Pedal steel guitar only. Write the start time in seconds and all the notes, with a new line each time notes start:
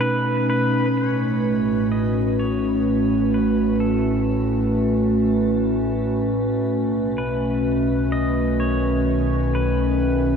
Already playing: A4
0.01 B4
0.50 B4
0.97 C#5
1.92 D#5
2.39 C#5
3.34 B4
3.80 A4
7.18 B4
8.12 D#5
8.60 C#5
9.55 B4